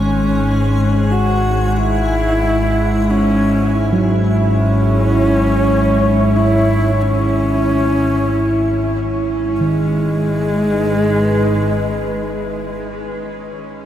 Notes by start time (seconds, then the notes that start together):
Already playing: G#1 G#2 G#3 C#4 G#5
1.12 F#4
1.71 F#4
1.77 E4
2.20 E4
3.11 C#4
3.83 C#5
3.93 F#3
4.41 C#4
6.36 E4
7.02 C#4
9.61 G#1 G#2 D#3 G#3
9.79 D#4
9.96 G#4
10.18 B4